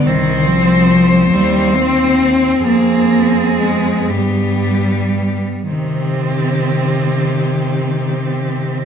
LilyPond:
<<
  \new Staff \with { instrumentName = "Cello" } { \time 6/8 \key c \minor \tempo 4. = 40 c''2. | aes'4. g'4~ g'16 r16 | g'2. | }
  \new Staff \with { instrumentName = "Cello" } { \time 6/8 \key c \minor c'4. c'4. | c'4. b4~ b16 r16 | c'2. | }
  \new Staff \with { instrumentName = "Cello" } { \clef bass \time 6/8 \key c \minor ees8 f4 g8 c'4 | bes4 aes8 g4. | ees2. | }
  \new Staff \with { instrumentName = "Cello" } { \clef bass \time 6/8 \key c \minor c,4. ees,4. | f,4. g,4~ g,16 r16 | c2. | }
>>